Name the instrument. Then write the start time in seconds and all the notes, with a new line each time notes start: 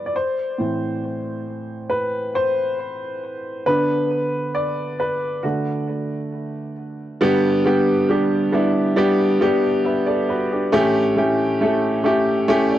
grand piano
Already playing: B4 D5
0.06 D5
0.16 C5
0.58 A2 E3 C4
1.90 B4
2.35 C5
3.66 D3 B3 D4 B4
4.55 D5
5.00 B4
5.44 D3 A3 F#4
7.21 G2 D3 G3 B3 D4 G4
7.65 G3 B3 D4 G4
8.09 G3 B3 D4 G4
8.52 G3 B3 D4 E4
8.96 G3 B3 D4 G4
9.41 G3 B3 D4 G4
9.85 B4 E5
10.06 A4 D5
10.29 F#4 B4
10.52 D4 G4
10.72 A2 E3 A3 C#4 E4 G4
11.16 A3 C#4 E4 G4
11.61 A3 C#4 E4 A4
12.04 A3 C#4 E4 G4 E5
12.48 A3 C#4 E4 G4 C#5
12.71 D5